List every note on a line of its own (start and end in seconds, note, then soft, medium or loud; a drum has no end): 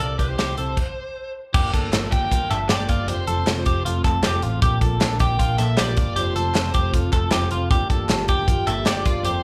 0.00 0.16 C2 medium
0.00 0.28 G3 medium
0.00 0.29 C4 medium
0.00 0.28 E4 medium
0.00 0.19 A4 loud
0.00 0.26 C5 medium
0.00 0.18 D5 medium
0.19 0.35 C2 medium
0.19 0.37 G4 medium
0.19 1.31 C5 medium
0.19 kick medium
0.19 closed hi-hat medium
0.27 0.57 C4 soft
0.27 0.58 E4 soft
0.27 0.57 C5 medium
0.38 0.54 C2 medium
0.38 0.57 G4 medium
0.38 snare loud
0.38 closed hi-hat medium
0.57 0.74 C2 medium
0.57 0.77 C3 medium
0.57 0.77 G3 medium
0.57 0.77 C4 medium
0.57 0.78 E4 medium
0.57 0.77 A4 medium
0.57 0.78 C5 medium
0.57 closed hi-hat medium
0.77 kick medium
0.77 crash medium
1.53 1.70 G1 medium
1.53 1.71 F3 medium
1.53 3.07 G3 medium
1.53 1.72 A#3 medium
1.53 3.07 A#3 medium
1.53 3.07 D4 medium
1.53 1.73 D4 medium
1.53 4.60 F4 medium
1.53 1.73 G4 loud
1.53 1.74 A#4 medium
1.53 kick loud
1.53 crash loud
1.72 1.89 G1 medium
1.72 1.92 F3 medium
1.72 1.92 A#3 medium
1.72 1.93 D4 medium
1.72 2.12 A4 medium
1.72 1.93 A#4 medium
1.72 kick medium
1.72 closed hi-hat medium
1.92 2.09 G1 medium
1.92 2.31 G2 medium
1.92 2.31 D3 medium
1.92 2.29 F3 medium
1.92 2.30 A#3 medium
1.92 2.31 D4 medium
1.92 2.32 A#4 medium
1.92 snare loud
1.92 clap medium
1.92 closed hi-hat medium
2.12 2.28 G1 medium
2.12 2.31 G4 medium
2.12 2.50 G5 loud
2.12 kick medium
2.12 closed hi-hat medium
2.30 2.47 G1 loud
2.30 2.48 F3 medium
2.30 2.49 A#3 medium
2.30 2.51 D4 medium
2.30 2.50 F4 medium
2.30 2.51 A#4 medium
2.30 kick medium
2.30 closed hi-hat medium
2.49 2.67 G1 medium
2.49 2.79 F3 medium
2.49 2.78 D4 medium
2.49 2.70 A4 medium
2.49 2.76 A#4 medium
2.49 2.56 E5 loud
2.49 clap medium
2.49 closed hi-hat medium
2.69 2.86 G1 loud
2.69 2.89 G4 medium
2.69 3.08 D5 medium
2.69 snare loud
2.69 clap loud
2.69 closed hi-hat loud
2.78 3.05 F3 soft
2.78 3.07 A#3 medium
2.78 3.08 D4 medium
2.78 3.07 A#4 medium
2.89 3.09 G1 medium
2.89 3.08 F4 medium
2.89 kick medium
2.89 closed hi-hat medium
3.06 3.24 F1 loud
3.06 3.25 F3 medium
3.06 4.61 A3 medium
3.06 3.26 C4 medium
3.06 4.61 C4 medium
3.06 3.27 F4 medium
3.06 3.27 G4 loud
3.06 3.28 A4 medium
3.06 3.82 C5 medium
3.06 closed hi-hat medium
3.26 3.44 F1 loud
3.26 3.44 F3 medium
3.26 3.45 C4 medium
3.26 3.46 F4 medium
3.26 3.64 A4 medium
3.26 3.47 A4 medium
3.26 closed hi-hat medium
3.46 3.63 F1 medium
3.46 3.83 F3 medium
3.46 3.84 C4 medium
3.46 3.86 F4 medium
3.46 3.86 A4 medium
3.46 snare loud
3.46 clap medium
3.46 closed hi-hat medium
3.66 3.82 F1 loud
3.66 3.85 G4 medium
3.66 kick medium
3.66 closed hi-hat medium
3.84 4.01 F1 loud
3.84 4.02 F3 medium
3.84 4.04 C4 medium
3.84 4.04 F4 medium
3.84 4.05 F4 medium
3.84 4.06 A4 medium
3.84 closed hi-hat medium
4.03 4.20 F1 loud
4.03 4.33 F3 medium
4.03 4.34 C4 medium
4.03 4.33 F4 medium
4.03 4.23 A4 medium
4.03 4.31 A4 medium
4.03 kick medium
4.03 clap medium
4.03 closed hi-hat medium
4.23 4.40 F1 loud
4.23 4.43 G4 medium
4.23 snare loud
4.23 clap loud
4.23 closed hi-hat loud
4.32 4.62 C4 medium
4.32 4.63 F4 medium
4.32 4.62 A4 medium
4.42 4.59 A1 medium
4.42 4.62 F4 medium
4.42 closed hi-hat medium
4.61 4.78 A#1 loud
4.61 4.80 F3 medium
4.61 6.15 A#3 medium
4.61 4.81 A#3 medium
4.61 6.15 D4 medium
4.61 4.82 D4 medium
4.61 9.21 F4 medium
4.61 4.81 G4 loud
4.61 4.83 A#4 medium
4.61 kick loud
4.61 closed hi-hat medium
4.81 4.97 A#1 loud
4.81 5.00 F3 medium
4.81 5.00 A#3 medium
4.81 5.01 D4 medium
4.81 5.18 A4 medium
4.81 5.01 A#4 medium
4.81 kick medium
4.81 closed hi-hat medium
5.00 5.17 A#1 loud
5.00 5.39 A#2 medium
5.00 5.39 D3 medium
5.00 5.37 F3 medium
5.00 5.38 A#3 medium
5.00 5.39 D4 medium
5.00 5.40 A#4 medium
5.00 snare loud
5.00 clap medium
5.00 closed hi-hat medium
5.19 5.36 A#1 medium
5.19 5.39 G4 medium
5.19 5.58 G5 loud
5.19 kick loud
5.19 closed hi-hat medium
5.38 5.55 A#1 loud
5.38 5.57 F3 medium
5.38 5.58 A#3 medium
5.38 5.59 D4 medium
5.38 5.58 F4 medium
5.38 5.60 A#4 medium
5.38 kick medium
5.38 closed hi-hat medium
5.58 5.75 A#1 medium
5.58 5.87 F3 medium
5.58 5.88 A#3 medium
5.58 5.87 D4 medium
5.58 5.77 A4 medium
5.58 5.86 A#4 medium
5.58 5.79 E5 medium
5.58 clap medium
5.58 closed hi-hat medium
5.77 5.94 A#1 loud
5.77 5.97 G4 medium
5.77 6.14 D5 loud
5.77 snare loud
5.77 clap loud
5.77 closed hi-hat loud
5.87 6.15 F3 soft
5.87 6.17 A#3 soft
5.87 6.17 D4 medium
5.87 6.16 A#4 medium
5.97 6.17 G1 medium
5.97 6.16 F4 medium
5.97 kick medium
5.97 closed hi-hat medium
6.16 6.33 F1 loud
6.16 6.34 F3 medium
6.16 7.69 A3 medium
6.16 7.69 C4 medium
6.16 6.35 C4 medium
6.16 6.36 F4 medium
6.16 6.35 G4 loud
6.16 6.37 A4 medium
6.16 6.90 C5 medium
6.16 closed hi-hat medium
6.35 6.52 F1 medium
6.35 6.54 F3 medium
6.35 6.55 C4 medium
6.35 6.55 F4 medium
6.35 6.72 A4 medium
6.35 6.56 A4 medium
6.35 closed hi-hat medium
6.54 6.71 F1 medium
6.54 6.92 F3 medium
6.54 6.92 C4 medium
6.54 6.95 F4 medium
6.54 6.95 A4 medium
6.54 snare loud
6.54 clap medium
6.54 closed hi-hat medium
6.74 6.90 F1 medium
6.74 6.93 G4 medium
6.74 kick medium
6.74 closed hi-hat medium
6.92 7.10 F1 medium
6.92 7.11 F3 medium
6.92 7.12 C4 medium
6.92 7.12 F4 medium
6.92 7.13 F4 medium
6.92 7.14 A4 medium
6.92 kick medium
6.92 closed hi-hat medium
7.12 7.29 F1 loud
7.12 7.42 F3 medium
7.12 7.42 C4 medium
7.12 7.42 F4 medium
7.12 7.31 A4 medium
7.12 7.40 A4 medium
7.12 kick medium
7.12 clap medium
7.12 closed hi-hat medium
7.31 7.48 F1 loud
7.31 7.51 G4 medium
7.31 snare loud
7.31 clap loud
7.31 closed hi-hat medium
7.41 7.71 C4 medium
7.41 7.71 F4 medium
7.41 7.71 A4 medium
7.51 7.68 F1 medium
7.51 7.70 F4 medium
7.51 closed hi-hat medium
7.70 7.86 G1 medium
7.70 7.88 F3 medium
7.70 9.23 G3 medium
7.70 9.23 A#3 medium
7.70 7.89 A#3 medium
7.70 9.23 D4 medium
7.70 7.90 D4 medium
7.70 7.90 G4 loud
7.70 7.91 G4 medium
7.70 kick loud
7.70 closed hi-hat medium
7.89 8.06 G1 medium
7.89 8.08 F3 medium
7.89 8.09 A#3 medium
7.89 8.09 D4 medium
7.89 8.10 G4 medium
7.89 8.26 A4 medium
7.89 kick medium
7.89 closed hi-hat medium
8.09 8.25 G1 loud
8.09 8.47 G2 medium
8.09 8.48 D3 medium
8.09 8.47 F3 medium
8.09 8.47 A#3 medium
8.09 8.48 D4 medium
8.09 8.49 G4 medium
8.09 snare loud
8.09 clap loud
8.09 closed hi-hat medium
8.28 8.45 G1 medium
8.28 8.48 G4 medium
8.28 8.65 G5 loud
8.28 kick medium
8.28 closed hi-hat medium
8.47 8.64 G1 loud
8.47 8.65 F3 medium
8.47 8.66 A#3 medium
8.47 8.67 D4 medium
8.47 8.67 F4 medium
8.47 8.68 G4 medium
8.47 kick medium
8.47 closed hi-hat medium
8.66 8.83 G1 medium
8.66 8.96 F3 medium
8.66 8.96 A#3 medium
8.66 8.96 D4 medium
8.66 8.94 G4 medium
8.66 8.86 A4 medium
8.66 8.85 E5 medium
8.66 clap medium
8.66 closed hi-hat medium
8.86 9.02 G1 loud
8.86 9.06 G4 medium
8.86 9.24 D5 loud
8.86 snare loud
8.86 clap loud
8.86 closed hi-hat loud
8.95 9.23 F3 soft
8.95 9.25 A#3 soft
8.95 9.25 D4 medium
8.95 9.24 G4 medium
9.05 9.25 G1 loud
9.05 9.25 F4 medium
9.05 kick medium
9.05 closed hi-hat medium
9.24 9.41 F1 loud
9.24 9.42 F3 medium
9.24 9.43 A3 medium
9.24 9.43 C4 medium
9.24 9.43 F4 medium
9.24 9.43 G4 loud
9.24 9.43 A4 medium
9.24 9.43 C5 medium
9.24 closed hi-hat medium